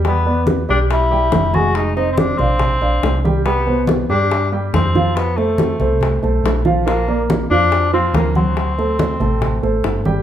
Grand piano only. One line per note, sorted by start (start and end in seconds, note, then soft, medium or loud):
0.05 0.23 G3 medium
0.05 0.22 G4 medium
0.05 0.23 G5 medium
0.26 0.61 B3 medium
0.26 0.61 B4 medium
0.26 0.61 D5 medium
0.69 1.04 G3 medium
0.69 1.04 G4 medium
0.69 1.04 G5 medium
1.11 1.46 G3 medium
1.11 1.46 G4 medium
1.11 1.47 G5 medium
1.54 1.89 G#3 medium
1.54 1.90 G#4 medium
1.54 1.90 G#5 medium
1.97 2.32 C4 medium
1.97 2.32 C5 medium
1.97 2.32 D#5 medium
2.39 2.74 D4 medium
2.39 2.75 D5 medium
2.39 2.75 F5 medium
2.82 3.17 D4 medium
2.82 3.17 D5 medium
2.82 3.17 F5 medium
3.25 3.42 G3 medium
3.25 3.42 G4 medium
3.25 3.42 G5 medium
3.45 3.63 G3 medium
3.45 3.63 G4 medium
3.45 3.64 G5 medium
3.67 4.02 B2 medium
3.67 4.02 B4 medium
3.67 4.02 C5 medium
4.10 4.45 G3 medium
4.10 4.45 G4 medium
4.10 4.45 G5 medium
4.52 4.87 G3 medium
4.52 4.87 G4 medium
4.52 4.88 G5 medium
4.95 5.30 F3 medium
4.95 5.30 F4 medium
4.95 5.30 F5 medium
5.38 5.73 A3 medium
5.38 5.73 A4 medium
5.38 5.73 C5 medium
5.80 6.15 A3 medium
5.80 6.15 A4 medium
5.80 6.16 C5 medium
6.23 6.58 A3 medium
6.23 6.58 A4 medium
6.23 6.58 C5 medium
6.65 6.82 F3 medium
6.65 6.83 F4 medium
6.65 6.83 F5 medium
6.87 7.04 F3 medium
6.87 7.04 F4 medium
6.87 7.04 F5 medium
7.08 7.43 A#3 medium
7.08 7.43 A#4 medium
7.08 7.43 D5 medium
7.51 7.86 F3 medium
7.51 7.86 F4 medium
7.51 7.86 F5 medium
7.93 8.28 F3 medium
7.93 8.28 F4 medium
7.93 8.28 F5 medium
8.36 8.71 F#3 medium
8.36 8.71 F#4 medium
8.36 8.71 F#5 medium
8.78 9.13 A3 medium
8.78 9.13 A4 medium
8.78 9.14 C5 medium
9.20 9.55 A3 medium
9.20 9.56 A4 medium
9.20 9.56 C5 medium
9.63 9.98 A3 medium
9.63 9.98 A4 medium
9.63 9.98 C5 medium
10.06 10.22 G3 medium
10.06 10.22 G4 medium
10.06 10.22 G5 medium